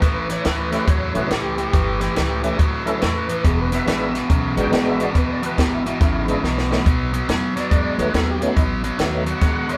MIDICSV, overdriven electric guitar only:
0, 0, Header, 1, 2, 480
1, 0, Start_track
1, 0, Tempo, 427046
1, 21, Time_signature, 4, 2, 24, 8
1, 10985, End_track
2, 0, Start_track
2, 0, Title_t, "Overdriven electric guitar"
2, 0, Program_c, 0, 29
2, 18, Note_on_c, 0, 45, 71
2, 24, Note_on_c, 0, 52, 77
2, 299, Note_off_c, 0, 45, 0
2, 302, Note_off_c, 0, 52, 0
2, 328, Note_on_c, 0, 45, 67
2, 332, Note_on_c, 0, 52, 81
2, 484, Note_off_c, 0, 45, 0
2, 487, Note_off_c, 0, 52, 0
2, 498, Note_on_c, 0, 45, 88
2, 502, Note_on_c, 0, 52, 92
2, 780, Note_off_c, 0, 45, 0
2, 782, Note_off_c, 0, 52, 0
2, 806, Note_on_c, 0, 45, 77
2, 811, Note_on_c, 0, 52, 83
2, 964, Note_off_c, 0, 45, 0
2, 967, Note_off_c, 0, 52, 0
2, 976, Note_on_c, 0, 45, 70
2, 982, Note_on_c, 0, 54, 95
2, 1260, Note_off_c, 0, 45, 0
2, 1263, Note_off_c, 0, 54, 0
2, 1288, Note_on_c, 0, 45, 65
2, 1296, Note_on_c, 0, 54, 70
2, 1446, Note_off_c, 0, 45, 0
2, 1450, Note_off_c, 0, 54, 0
2, 1467, Note_on_c, 0, 45, 75
2, 1473, Note_on_c, 0, 52, 94
2, 1745, Note_off_c, 0, 45, 0
2, 1748, Note_off_c, 0, 52, 0
2, 1773, Note_on_c, 0, 45, 76
2, 1779, Note_on_c, 0, 52, 74
2, 1929, Note_off_c, 0, 45, 0
2, 1932, Note_off_c, 0, 52, 0
2, 1947, Note_on_c, 0, 45, 75
2, 1954, Note_on_c, 0, 52, 83
2, 2226, Note_off_c, 0, 45, 0
2, 2230, Note_off_c, 0, 52, 0
2, 2252, Note_on_c, 0, 45, 76
2, 2256, Note_on_c, 0, 52, 87
2, 2409, Note_off_c, 0, 45, 0
2, 2411, Note_off_c, 0, 52, 0
2, 2421, Note_on_c, 0, 45, 91
2, 2429, Note_on_c, 0, 52, 93
2, 2704, Note_off_c, 0, 45, 0
2, 2707, Note_off_c, 0, 52, 0
2, 2735, Note_on_c, 0, 45, 79
2, 2742, Note_on_c, 0, 52, 89
2, 2891, Note_off_c, 0, 45, 0
2, 2895, Note_off_c, 0, 52, 0
2, 2907, Note_on_c, 0, 45, 77
2, 2911, Note_on_c, 0, 54, 96
2, 3187, Note_off_c, 0, 45, 0
2, 3189, Note_off_c, 0, 54, 0
2, 3212, Note_on_c, 0, 45, 69
2, 3218, Note_on_c, 0, 54, 77
2, 3370, Note_off_c, 0, 45, 0
2, 3373, Note_off_c, 0, 54, 0
2, 3383, Note_on_c, 0, 45, 88
2, 3391, Note_on_c, 0, 52, 81
2, 3665, Note_off_c, 0, 45, 0
2, 3669, Note_off_c, 0, 52, 0
2, 3694, Note_on_c, 0, 45, 68
2, 3698, Note_on_c, 0, 52, 76
2, 3851, Note_off_c, 0, 45, 0
2, 3853, Note_off_c, 0, 52, 0
2, 3866, Note_on_c, 0, 40, 77
2, 3874, Note_on_c, 0, 47, 78
2, 4147, Note_off_c, 0, 40, 0
2, 4151, Note_off_c, 0, 47, 0
2, 4182, Note_on_c, 0, 40, 72
2, 4187, Note_on_c, 0, 47, 80
2, 4335, Note_off_c, 0, 40, 0
2, 4337, Note_off_c, 0, 47, 0
2, 4350, Note_on_c, 0, 40, 88
2, 4358, Note_on_c, 0, 47, 94
2, 4628, Note_off_c, 0, 40, 0
2, 4633, Note_off_c, 0, 47, 0
2, 4663, Note_on_c, 0, 40, 72
2, 4668, Note_on_c, 0, 47, 85
2, 4815, Note_off_c, 0, 40, 0
2, 4818, Note_off_c, 0, 47, 0
2, 4830, Note_on_c, 0, 40, 76
2, 4835, Note_on_c, 0, 49, 90
2, 5109, Note_off_c, 0, 40, 0
2, 5111, Note_off_c, 0, 49, 0
2, 5138, Note_on_c, 0, 40, 59
2, 5145, Note_on_c, 0, 49, 74
2, 5293, Note_off_c, 0, 40, 0
2, 5296, Note_off_c, 0, 49, 0
2, 5308, Note_on_c, 0, 40, 82
2, 5312, Note_on_c, 0, 47, 92
2, 5587, Note_off_c, 0, 40, 0
2, 5589, Note_off_c, 0, 47, 0
2, 5618, Note_on_c, 0, 40, 68
2, 5620, Note_on_c, 0, 47, 74
2, 5773, Note_off_c, 0, 40, 0
2, 5774, Note_off_c, 0, 47, 0
2, 5791, Note_on_c, 0, 40, 63
2, 5795, Note_on_c, 0, 47, 90
2, 6068, Note_off_c, 0, 40, 0
2, 6071, Note_off_c, 0, 47, 0
2, 6096, Note_on_c, 0, 40, 75
2, 6103, Note_on_c, 0, 47, 93
2, 6252, Note_off_c, 0, 40, 0
2, 6255, Note_off_c, 0, 47, 0
2, 6272, Note_on_c, 0, 40, 101
2, 6276, Note_on_c, 0, 47, 96
2, 6549, Note_off_c, 0, 40, 0
2, 6551, Note_off_c, 0, 47, 0
2, 6585, Note_on_c, 0, 40, 67
2, 6588, Note_on_c, 0, 47, 84
2, 6736, Note_off_c, 0, 40, 0
2, 6737, Note_off_c, 0, 47, 0
2, 6753, Note_on_c, 0, 40, 70
2, 6757, Note_on_c, 0, 49, 91
2, 7029, Note_off_c, 0, 40, 0
2, 7031, Note_off_c, 0, 49, 0
2, 7061, Note_on_c, 0, 40, 64
2, 7067, Note_on_c, 0, 49, 74
2, 7213, Note_off_c, 0, 40, 0
2, 7217, Note_off_c, 0, 49, 0
2, 7231, Note_on_c, 0, 40, 75
2, 7239, Note_on_c, 0, 47, 101
2, 7508, Note_off_c, 0, 40, 0
2, 7512, Note_off_c, 0, 47, 0
2, 7539, Note_on_c, 0, 40, 66
2, 7545, Note_on_c, 0, 47, 68
2, 7692, Note_off_c, 0, 40, 0
2, 7695, Note_off_c, 0, 47, 0
2, 7711, Note_on_c, 0, 47, 66
2, 7716, Note_on_c, 0, 54, 85
2, 7987, Note_off_c, 0, 47, 0
2, 7990, Note_off_c, 0, 54, 0
2, 8015, Note_on_c, 0, 47, 73
2, 8019, Note_on_c, 0, 54, 88
2, 8170, Note_off_c, 0, 47, 0
2, 8172, Note_off_c, 0, 54, 0
2, 8189, Note_on_c, 0, 47, 92
2, 8194, Note_on_c, 0, 54, 92
2, 8466, Note_off_c, 0, 47, 0
2, 8468, Note_off_c, 0, 54, 0
2, 8498, Note_on_c, 0, 47, 69
2, 8506, Note_on_c, 0, 54, 80
2, 8651, Note_off_c, 0, 47, 0
2, 8655, Note_off_c, 0, 54, 0
2, 8665, Note_on_c, 0, 47, 84
2, 8673, Note_on_c, 0, 56, 78
2, 8943, Note_off_c, 0, 47, 0
2, 8947, Note_off_c, 0, 56, 0
2, 8977, Note_on_c, 0, 47, 57
2, 8981, Note_on_c, 0, 56, 80
2, 9130, Note_off_c, 0, 47, 0
2, 9132, Note_off_c, 0, 56, 0
2, 9147, Note_on_c, 0, 47, 90
2, 9152, Note_on_c, 0, 54, 94
2, 9424, Note_off_c, 0, 47, 0
2, 9426, Note_off_c, 0, 54, 0
2, 9453, Note_on_c, 0, 47, 68
2, 9462, Note_on_c, 0, 54, 81
2, 9607, Note_off_c, 0, 47, 0
2, 9611, Note_off_c, 0, 54, 0
2, 9626, Note_on_c, 0, 47, 67
2, 9631, Note_on_c, 0, 54, 83
2, 9903, Note_off_c, 0, 47, 0
2, 9905, Note_off_c, 0, 54, 0
2, 9934, Note_on_c, 0, 47, 75
2, 9938, Note_on_c, 0, 54, 84
2, 10087, Note_off_c, 0, 47, 0
2, 10089, Note_off_c, 0, 54, 0
2, 10101, Note_on_c, 0, 47, 88
2, 10106, Note_on_c, 0, 54, 98
2, 10379, Note_off_c, 0, 47, 0
2, 10382, Note_off_c, 0, 54, 0
2, 10410, Note_on_c, 0, 47, 77
2, 10417, Note_on_c, 0, 54, 83
2, 10564, Note_off_c, 0, 47, 0
2, 10568, Note_off_c, 0, 54, 0
2, 10583, Note_on_c, 0, 47, 84
2, 10587, Note_on_c, 0, 56, 78
2, 10860, Note_off_c, 0, 47, 0
2, 10862, Note_off_c, 0, 56, 0
2, 10890, Note_on_c, 0, 47, 69
2, 10895, Note_on_c, 0, 56, 75
2, 10985, Note_off_c, 0, 47, 0
2, 10985, Note_off_c, 0, 56, 0
2, 10985, End_track
0, 0, End_of_file